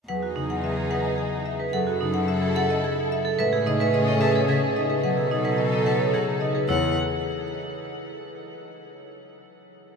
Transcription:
0.08 cello E2, harp F#3, string section D#4 G#4, clarinet G#4, vibraphone B4, marimba F#5
0.23 vibraphone F#4
0.36 harp C#3, vibraphone D#4
0.50 marimba F#5
0.64 marimba E5
0.77 vibraphone G#4
0.90 vibraphone B4, marimba F#5
1.05 marimba D#5
1.18 marimba G#4
1.46 marimba E5
1.60 vibraphone B4
1.73 cello F#2, harp F#3, string section E4 A4, vibraphone A4, clarinet A4, marimba F#5
1.87 vibraphone F#4
2.01 harp C#3, vibraphone D#4
2.14 marimba F#5
2.28 marimba E5
2.42 vibraphone G#4
2.56 vibraphone A4, marimba F#5
2.70 marimba D#5
2.84 marimba G#4
3.12 marimba E5
3.25 vibraphone A4
3.38 cello A2, harp G#3, string section C#4 G#4, clarinet G#4, vibraphone B4, marimba E5
3.52 harp A3, vibraphone G#4
3.66 harp C#3, vibraphone D#4, marimba D#5
3.80 vibraphone B4, marimba E5
3.94 marimba D#5
4.07 vibraphone A4, violin D#5
4.21 harp A3, vibraphone B4, marimba E5, violin A5
4.35 vibraphone A4, marimba C#5
4.48 harp C#3, marimba G#4, vibraphone G#4, violin E5
4.76 vibraphone D#4, marimba D#5
4.90 marimba G#4, vibraphone B4
5.03 cello B2, harp F#3, string section D#4 A4, clarinet A4, vibraphone B4, marimba F#5
5.17 harp A3, vibraphone G#4
5.31 harp C#3, vibraphone D#4, marimba D#5
5.45 vibraphone B4, marimba F#5
5.58 marimba D#5
5.72 vibraphone A4, violin D#5
5.86 harp A3, vibraphone B4, marimba F#5, violin A5
6.00 vibraphone A4, marimba C#5
6.14 harp C#3, marimba G#4, vibraphone G#4, violin F#5
6.41 vibraphone D#4, marimba D#5
6.55 marimba G#4, vibraphone B4
6.68 cello E2, harp E3, vibraphone E4, marimba C#5, violin F#5

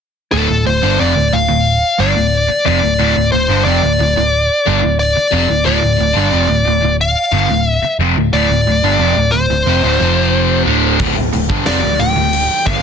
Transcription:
0.32 picked electric bass D1, overdriven electric guitar D2 A2, lead electric guitar A4
0.49 picked electric bass D1, overdriven electric guitar D2 A2
0.66 picked electric bass D1, overdriven electric guitar D2 A2, lead electric guitar C5
0.82 picked electric bass G1, overdriven electric guitar G2 D3
0.99 picked electric bass F1, overdriven electric guitar F2 C3, lead electric guitar D5
1.16 picked electric bass D1, overdriven electric guitar D2 A2
1.33 picked electric bass D1, overdriven electric guitar D2 A2, lead electric guitar F5
1.49 picked electric bass D1, overdriven electric guitar D2 A2
1.99 picked electric bass G1, overdriven electric guitar G2 D3, lead electric guitar D5
2.16 picked electric bass D1, overdriven electric guitar D2 A2
2.48 muted overdriven electric guitar stroke, muted picked electric bass stroke
2.65 picked electric bass F1, overdriven electric guitar F2 C3, lead electric guitar D5
2.82 picked electric bass D1, overdriven electric guitar D2 A2
2.98 picked electric bass D1, overdriven electric guitar D2 A2
3.15 picked electric bass D1, overdriven electric guitar D2 A2
3.32 picked electric bass D1, overdriven electric guitar D2 A2, lead electric guitar C5
3.49 picked electric bass G1, overdriven electric guitar G2 D3
3.65 picked electric bass F1, overdriven electric guitar F2 C3, lead electric guitar D5
3.83 picked electric bass D1, overdriven electric guitar D2 A2
3.99 picked electric bass D1, overdriven electric guitar D2 A2
4.16 picked electric bass D1, overdriven electric guitar D2 A2
4.66 picked electric bass G1, overdriven electric guitar G2 D3
4.82 picked electric bass D1, overdriven electric guitar D2 A2
4.99 lead electric guitar D5
5.16 muted overdriven electric guitar stroke, muted picked electric bass stroke
5.31 picked electric bass F1, overdriven electric guitar F2 C3
5.47 picked electric bass D1, overdriven electric guitar D2 A2
5.64 picked electric bass D1, overdriven electric guitar D2 A2, lead electric guitar D5
5.79 picked electric bass D1, overdriven electric guitar D2 A2
5.84 overdriven electric guitar A2
5.97 picked electric bass D1, overdriven electric guitar D2 A2
6.13 picked electric bass G1, overdriven electric guitar G2 D3
6.30 picked electric bass F1, overdriven electric guitar F2 C3
6.47 picked electric bass D1, overdriven electric guitar D2 A2
6.65 picked electric bass D1, overdriven electric guitar D2 A2
6.81 picked electric bass D1, overdriven electric guitar D2 A2
7.01 lead electric guitar F5
7.32 picked electric bass G1, overdriven electric guitar G2 D3
7.49 picked electric bass D1, overdriven electric guitar D2 A2
7.65 lead electric guitar E5
7.82 muted picked electric bass stroke, muted overdriven electric guitar stroke
7.99 picked electric bass F1, overdriven electric guitar F2 C3
8.16 picked electric bass D1, overdriven electric guitar D2 A2
8.32 picked electric bass D1, overdriven electric guitar D2 A2, lead electric guitar D5
8.49 picked electric bass D1, overdriven electric guitar D2 A2
8.66 picked electric bass D1, overdriven electric guitar D2 A2
8.82 picked electric bass G1, overdriven electric guitar G2 D3
8.99 picked electric bass F1, overdriven electric guitar F2 C3
9.16 picked electric bass D1, overdriven electric guitar D2 A2
9.32 picked electric bass D1, overdriven electric guitar D2 A2, lead electric guitar C5
9.50 picked electric bass D1, overdriven electric guitar D2 A2
9.67 picked electric bass F1, overdriven electric guitar F2 C3
9.83 picked electric bass D1, overdriven electric guitar D2 A2
10.01 picked electric bass F1, overdriven electric guitar F2 C3 F3
10.67 picked electric bass D1, overdriven electric guitar D2 A2 D3
11.00 picked electric bass D1, overdriven electric guitar D2 A2, kick, open hi-hat
11.17 picked electric bass D1, overdriven electric guitar D2 A2
11.33 picked electric bass D1, overdriven electric guitar D2 A2, open hi-hat
11.49 picked electric bass G1, overdriven electric guitar G2 D3, kick
11.66 picked electric bass F1, overdriven electric guitar F2 C3, lead electric guitar D5, snare, open hi-hat
11.83 picked electric bass D1, overdriven electric guitar D2 A2
11.99 picked electric bass D1, overdriven electric guitar D2 A2, lead electric guitar G5, open hi-hat
12.16 picked electric bass D1, overdriven electric guitar D2 A2
12.33 open hi-hat
12.66 picked electric bass G1, overdriven electric guitar G2 D3, lead electric guitar F5, kick, open hi-hat

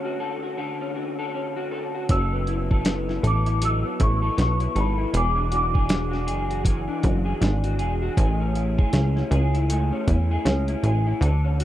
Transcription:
Already playing: clean electric guitar D3 A3 C#4 A4
0.05 clean electric guitar F#4
0.20 clean electric guitar A4
0.43 clean electric guitar F#4
0.57 clean electric guitar D3 A4
0.81 clean electric guitar C#4
0.95 clean electric guitar F#4
1.19 clean electric guitar A4
1.34 clean electric guitar C#4
1.56 clean electric guitar F#4
1.71 clean electric guitar A4
1.94 clean electric guitar F#4
2.09 analog synth bass F#1, clean electric guitar F#3 A4, celesta E6, kick, closed hi-hat
2.33 clean electric guitar B3
2.47 clean electric guitar E4, closed hi-hat
2.71 clean electric guitar A4, kick
2.85 clean electric guitar B3, snare, closed hi-hat
3.09 clean electric guitar E4, snare
3.23 analog synth bass A1, clean electric guitar A4, closed hi-hat
3.27 celesta D6
3.46 clean electric guitar E4, closed hi-hat
3.61 clean electric guitar F#3 A4, celesta E6, closed hi-hat
3.84 clean electric guitar B3
4.00 analog synth bass A1, clean electric guitar E4, celesta C#6, kick, closed hi-hat
4.22 clean electric guitar A4
4.37 analog synth bass B1, clean electric guitar B3, snare, closed hi-hat
4.41 celesta C#6
4.60 clean electric guitar E4, closed hi-hat
4.75 analog synth bass G#1, clean electric guitar A4, closed hi-hat
4.80 celesta B5
4.98 clean electric guitar E4
5.13 analog synth bass E1, clean electric guitar E3 G#4, celesta D6, closed hi-hat
5.35 clean electric guitar D4
5.52 clean electric guitar F#4, closed hi-hat
5.56 celesta D6
5.74 clean electric guitar G#4, kick
5.88 clean electric guitar D4, snare, closed hi-hat
6.11 clean electric guitar F#4, snare
6.27 analog synth bass F#1, clean electric guitar G#4, closed hi-hat
6.50 clean electric guitar F#4, closed hi-hat
6.64 clean electric guitar E3 G#4, kick, closed hi-hat
6.87 clean electric guitar D4
7.02 analog synth bass F#1, clean electric guitar F#4, kick, closed hi-hat
7.25 clean electric guitar G#4
7.40 analog synth bass G#1, clean electric guitar D4, snare, closed hi-hat
7.64 clean electric guitar F#4, closed hi-hat
7.79 analog synth bass E1, clean electric guitar G#4, closed hi-hat
8.02 clean electric guitar F#4
8.17 analog synth bass A1, clean electric guitar A3 G#4, kick, closed hi-hat
8.40 clean electric guitar C#4
8.55 clean electric guitar E4, closed hi-hat
8.78 clean electric guitar G#4, kick
8.93 analog synth bass C#2, clean electric guitar C#4, snare, closed hi-hat
9.16 clean electric guitar E4, snare
9.31 analog synth bass C#2, clean electric guitar G#4, closed hi-hat
9.54 clean electric guitar E4, closed hi-hat
9.70 clean electric guitar A3 G#4, closed hi-hat
9.92 clean electric guitar C#4
10.08 analog synth bass E2, clean electric guitar E4, kick, closed hi-hat
10.31 clean electric guitar G#4
10.45 analog synth bass C#2, clean electric guitar C#4, snare, closed hi-hat
10.68 clean electric guitar E4, closed hi-hat
10.83 analog synth bass A1, clean electric guitar G#4, closed hi-hat
11.07 clean electric guitar E4
11.21 analog synth bass D2, clean electric guitar D3 A4, closed hi-hat
11.45 clean electric guitar C#4
11.60 clean electric guitar F#4, closed hi-hat

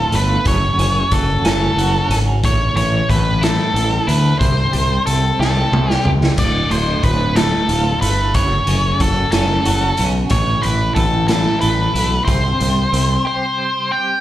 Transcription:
Already playing: clean electric guitar D2 A2 A3 F4, lead electric guitar A4
0.12 fingered electric bass G1, clean electric guitar A3, lead electric guitar B4, closed hi-hat
0.45 fingered electric bass F#1, clean electric guitar F#2, lead electric guitar C#5, kick, closed hi-hat
0.78 fingered electric bass F#1, clean electric guitar C#3, closed hi-hat
1.11 fingered electric bass F#1, clean electric guitar F#3, lead electric guitar A4, kick, closed hi-hat
1.44 fingered electric bass F#1, clean electric guitar C#4, snare, closed hi-hat
1.48 lead electric guitar A4
1.76 fingered electric bass F#1, clean electric guitar F#4, closed hi-hat
2.09 fingered electric bass G#1, clean electric guitar C#4, closed hi-hat
2.43 fingered electric bass A1, clean electric guitar A2, lead electric guitar C#5, kick, closed hi-hat
2.76 fingered electric bass A1, clean electric guitar E3, lead electric guitar C#5, closed hi-hat
3.09 fingered electric bass A1, clean electric guitar A3, lead electric guitar B4, kick, closed hi-hat
3.41 clean electric guitar E4, lead electric guitar A4, snare, closed hi-hat
3.74 fingered electric bass A1, clean electric guitar A4, closed hi-hat
4.07 fingered electric bass D2, clean electric guitar E4, lead electric guitar B4, closed hi-hat
4.39 fingered electric bass C2, clean electric guitar C3, lead electric guitar C5, kick, closed hi-hat
4.73 fingered electric bass C2, clean electric guitar G3, closed hi-hat
5.06 fingered electric bass C2, clean electric guitar C4, lead electric guitar A4, closed hi-hat
5.39 fingered electric bass C2, clean electric guitar G4, lead electric guitar A4, snare
5.72 fingered electric bass C2, clean electric guitar C5, mid tom
5.90 lead electric guitar G4, snare
6.05 fingered electric bass C#2, clean electric guitar G4, floor tom
6.23 snare
6.38 fingered electric bass D1, clean electric guitar D2, lead electric guitar D5, kick, closed hi-hat, crash
6.70 fingered electric bass D1, clean electric guitar A2, lead electric guitar C5, closed hi-hat
7.03 fingered electric bass D1, clean electric guitar A2, lead electric guitar B4, kick, closed hi-hat
7.36 clean electric guitar A3, lead electric guitar A4, snare, closed hi-hat
7.69 fingered electric bass D1, clean electric guitar F4, closed hi-hat
8.01 fingered electric bass G1, clean electric guitar A3, lead electric guitar B4, closed hi-hat
8.34 fingered electric bass F#1, clean electric guitar F#2, lead electric guitar C#5, kick, closed hi-hat
8.67 fingered electric bass F#1, clean electric guitar C#3, closed hi-hat
9.00 fingered electric bass F#1, clean electric guitar F#3, lead electric guitar A4, kick, closed hi-hat
9.32 fingered electric bass F#1, clean electric guitar C#4, lead electric guitar A4, snare, closed hi-hat
9.65 fingered electric bass F#1, clean electric guitar F#4, closed hi-hat
9.97 fingered electric bass B1, clean electric guitar C#4, closed hi-hat
10.30 fingered electric bass A1, clean electric guitar A2, lead electric guitar C#5, kick, closed hi-hat
10.62 fingered electric bass A1, clean electric guitar E3, lead electric guitar B4, closed hi-hat
10.95 fingered electric bass A1, clean electric guitar A3, lead electric guitar A4, kick, closed hi-hat
11.28 clean electric guitar E4, lead electric guitar A4, snare, closed hi-hat
11.61 fingered electric bass A1, clean electric guitar A4, lead electric guitar B4, closed hi-hat
11.94 fingered electric bass B1, clean electric guitar E4, closed hi-hat
12.25 fingered electric bass C2, clean electric guitar C3, lead electric guitar C5, kick, closed hi-hat
12.60 fingered electric bass C2, clean electric guitar G3, closed hi-hat
12.92 fingered electric bass C2, clean electric guitar C4, closed hi-hat
13.25 clean electric guitar G4, lead electric guitar C5
13.58 clean electric guitar C5
13.91 clean electric guitar G4, lead electric guitar G5

